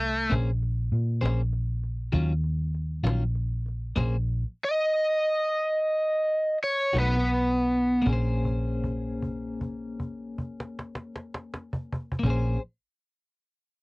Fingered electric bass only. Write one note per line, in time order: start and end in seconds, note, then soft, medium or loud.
0.00 0.28 C2 medium
0.32 0.89 A#1 loud
0.92 1.20 A#2 loud
1.22 2.09 A#1 loud
2.14 3.01 D#2 loud
3.03 3.92 A#1 medium
3.97 4.43 A#1 loud
6.94 8.02 B1 medium
8.06 12.11 A#1 loud
12.23 12.56 A#1 medium